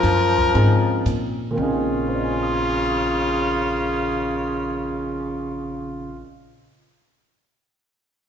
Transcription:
Already playing: baritone saxophone F3, trumpet A#4
0.03 upright bass F#2, kick, snare, hi-hat pedal, ride
0.39 kick
0.54 upright bass G#2, upright piano C4 C#4 D#4 G#4, kick, ride
1.06 upright bass A#2, kick, hi-hat pedal, ride
1.51 upright piano A#2 A#3
1.56 upright bass A#1, baritone saxophone C#3, upright piano C4 C#4, trumpet F4
1.60 upright piano D#4 G#4
2.08 upright piano C5
2.16 upright piano D#5
2.24 upright piano G#5
2.33 upright piano C6
2.43 upright piano D#6
2.53 upright piano G#6
2.65 upright piano C7

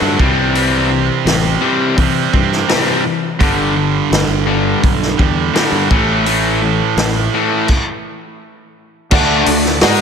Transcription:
Already playing: overdriven electric guitar D3 F#3 A3, distorted electric guitar D4
0.01 fingered electric bass G2
0.19 fingered electric bass C2, overdriven electric guitar C3 E3 G3, distorted electric guitar C4, kick
0.54 overdriven electric guitar C3 E3 G3, open hi-hat
0.90 overdriven electric guitar C3 E3
1.25 fingered electric bass A1, overdriven electric guitar C3 E3, snare, open hi-hat
1.61 overdriven electric guitar C3 E3 G3
1.97 overdriven electric guitar C3 E3, fingered electric bass C3, distorted electric guitar G3, kick, open hi-hat
2.01 distorted electric guitar C4
2.33 fingered electric bass G2, overdriven electric guitar C3 E3, distorted electric guitar G3 C4, kick
2.52 snare
2.68 overdriven electric guitar C3 E3 G3, snare, open hi-hat
3.03 overdriven electric guitar C3 E3
3.40 fingered electric bass G1, overdriven electric guitar G2 D3 G3, kick, open hi-hat
3.76 overdriven electric guitar G2 D3
4.10 fingered electric bass G1, overdriven electric guitar G2 D3, snare, open hi-hat
4.28 fingered electric bass G1
4.46 overdriven electric guitar G2 D3 G3
4.81 fingered electric bass B1, overdriven electric guitar G2 D3, kick, open hi-hat
5.03 snare
5.17 fingered electric bass E2, overdriven electric guitar G2 D3, distorted electric guitar G3, kick
5.53 overdriven electric guitar G2 D3 G3, snare, open hi-hat
5.72 fingered electric bass G2
5.90 fingered electric bass A1, overdriven electric guitar A2 E3 A3, kick
6.26 overdriven electric guitar A2 E3 A3, open hi-hat
6.62 overdriven electric guitar A2 E3
6.96 fingered electric bass A1, overdriven electric guitar A2 E3, snare, open hi-hat
7.34 overdriven electric guitar A2 E3 A3
7.68 kick, crash
9.11 fingered electric bass D2, overdriven electric guitar D3 A3 D4, upright piano F#4 A4 D5 F#5, tonewheel organ F#4 D5, kick, crash
9.46 fingered electric bass D2, overdriven electric guitar D3 A3, open hi-hat
9.65 snare
9.81 fingered electric bass G#2, overdriven electric guitar G#3 D#4 G#4, upright piano F#4 D5 F#5, snare, open hi-hat

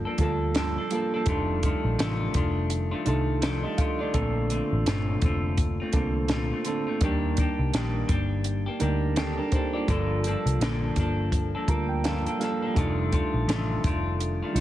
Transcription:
Already playing: reed electric piano G3 A#3 F4 A4
0.05 clean electric guitar F3 A#3 D4 A4
0.18 picked electric bass D2, clean electric guitar F3 A#3, reed electric piano G3 A#3 F4 A4, kick, closed hi-hat
0.22 clean electric guitar D4 A4
0.55 clean electric guitar G2 D3 F3 A#3 D4 A4, snare, closed hi-hat
0.78 clean electric guitar F3 A#3 D4 A4
0.90 clean electric guitar F3 A#3, reed electric piano G3 A#3 F4 A4, closed hi-hat
0.95 clean electric guitar D4 A4
1.14 clean electric guitar F3 A#3 D4 A4
1.26 picked electric bass F1, clean electric guitar F2 C3 D#3 A3 D4 F4, reed electric piano G3 D4 D#4 A4, kick, closed hi-hat
1.63 clean electric guitar D#3 A3 D4 F4, kick, closed hi-hat
1.84 picked electric bass A#1
1.99 picked electric bass A1, clean electric guitar F2 C3 D#3 A3 D4 F4, snare, closed hi-hat
2.34 picked electric bass F1, clean electric guitar D#3 A3 D4 F4, kick, closed hi-hat
2.70 closed hi-hat
2.91 clean electric guitar D#3 A3 D4 F4
3.05 picked electric bass C2, clean electric guitar D#3 A3 D4 F4, reed electric piano G3 D4 D#4 A4, closed hi-hat
3.42 clean electric guitar F2 C3 D#3 A3 D4 F4, snare, closed hi-hat
3.63 clean electric guitar D#3 A3 D4 F4, reed electric piano G4 D#5
3.78 clean electric guitar D#3 A3 D4 F4, reed electric piano A4 F5, kick, closed hi-hat
3.99 clean electric guitar D#3 A3 D4 F4, reed electric piano F4 D5
4.14 picked electric bass A#1, clean electric guitar A#2 D3 A3 C4 F4, reed electric piano A#3 C4 D4 A4, kick, closed hi-hat
4.50 clean electric guitar D3 A3 C4 F4, closed hi-hat
4.72 picked electric bass A1
4.86 picked electric bass G1, clean electric guitar A#2 D3 A3 C4 F4, snare, closed hi-hat
5.22 picked electric bass F1, clean electric guitar D3 A3 C4 F4, kick, closed hi-hat
5.58 kick, closed hi-hat
5.80 clean electric guitar A3 C4 F4
5.93 picked electric bass C2, clean electric guitar D3 A3 C4, reed electric piano A#3 C4 D4 A4, kick, closed hi-hat
5.97 clean electric guitar F4
6.28 clean electric guitar A#2 D3 A3 C4 F4, snare, closed hi-hat
6.51 clean electric guitar A3 C4 F4
6.64 clean electric guitar D3 A3 C4 F4, reed electric piano A3 C4 D4 A4, closed hi-hat
6.87 clean electric guitar A3 C4 F4
7.01 picked electric bass D#2, clean electric guitar D#3 G3 A#3 D4 G4, reed electric piano F3 D4 D#4 A#4, kick, closed hi-hat
7.07 reed electric piano G3
7.37 clean electric guitar G3 A#3 D4, kick, closed hi-hat
7.41 clean electric guitar G4
7.59 picked electric bass C2
7.74 picked electric bass A#1, clean electric guitar D#3 G3 A#3 D4 G4, snare, closed hi-hat
8.08 picked electric bass G1, clean electric guitar G3 A#3 D4 G4, kick, closed hi-hat
8.44 closed hi-hat
8.66 clean electric guitar A#3 D4 G4
8.79 picked electric bass D2, reed electric piano G3 D4 D#4 A#4, clean electric guitar G3 A#3 D4 G4, closed hi-hat
9.16 clean electric guitar D#3 G3 A#3 D4 G4, reed electric piano C4 A4, snare, closed hi-hat
9.37 clean electric guitar A#3 D4 G4, reed electric piano D4 A#4
9.52 clean electric guitar G3 A#3 D4, reed electric piano D#4 C5, kick, closed hi-hat
9.56 clean electric guitar G4
9.73 clean electric guitar A#3 D4 G4, reed electric piano F4 D5
9.87 picked electric bass G1, clean electric guitar G2 D3 F3 A#3 D4 A4, reed electric piano G3 A#3 F4 A4, kick, closed hi-hat
10.24 clean electric guitar F3 A#3 D4, closed hi-hat
10.29 clean electric guitar A4
10.46 picked electric bass C2, closed hi-hat
10.60 picked electric bass A#1, clean electric guitar G2 D3 F3 A#3 D4 A4, snare, closed hi-hat
10.96 picked electric bass G1, clean electric guitar F3 A#3 D4, kick, closed hi-hat
11.00 clean electric guitar A4
11.32 kick, closed hi-hat
11.55 clean electric guitar F3 A#3 D4 A4
11.68 picked electric bass D2, reed electric piano G3 A#3 F4 A#4 A#5, clean electric guitar A#3 D4 A4, kick, closed hi-hat
11.89 reed electric piano G5
12.04 clean electric guitar G2 D3 F3 A#3 D4 A4, reed electric piano F5, snare, closed hi-hat
12.26 clean electric guitar F3 A#3 D4 A4, closed hi-hat
12.38 clean electric guitar F3 A#3, reed electric piano G3 A#3 F4 A4 F5, snare, closed hi-hat
12.43 clean electric guitar D4 A4
12.62 clean electric guitar F3 A#3 D4 A4
12.74 picked electric bass F1, clean electric guitar F2 C3 D#3, reed electric piano G3 D4 D#4 A4, kick, closed hi-hat
12.78 clean electric guitar A3 D4 F4
13.12 clean electric guitar D#3 A3 D4 F4, kick, closed hi-hat
13.34 picked electric bass A#1
13.47 picked electric bass A1, clean electric guitar F2 C3 D#3 A3 D4 F4, snare, closed hi-hat
13.84 picked electric bass F1, clean electric guitar D#3 A3 D4 F4, kick, closed hi-hat
14.20 closed hi-hat
14.42 clean electric guitar D#3 A3 D4 F4
14.53 picked electric bass C2, clean electric guitar D#3 A3 D4, reed electric piano G3 D4 D#4 F4, closed hi-hat

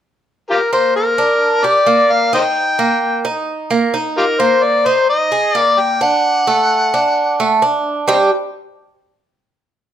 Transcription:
0.50 harmonica F4 G4 A#4
0.73 cuban tres A#3, harmonica C5
0.96 harmonica A#4
1.18 cuban tres D4
1.64 cuban tres G4, harmonica D5
1.87 cuban tres A#3
2.11 harmonica F5
2.33 cuban tres D#4, harmonica C5 D#5 G5
2.79 cuban tres A#3
3.25 cuban tres D#4
3.71 cuban tres A#3
3.94 cuban tres D#4
4.17 harmonica F4 G4 A#4
4.40 cuban tres A#3, harmonica C5
4.63 harmonica D5
4.86 cuban tres D#4, harmonica C5
5.09 harmonica D#5
5.32 cuban tres G#4
5.55 cuban tres A#3, harmonica D5
5.79 harmonica G5
6.01 cuban tres D4, harmonica F#5
6.47 cuban tres A3
6.94 cuban tres D4
7.40 cuban tres A3
7.62 cuban tres D4
8.08 cuban tres G3 D4 G4, harmonica C5 D#5 G5

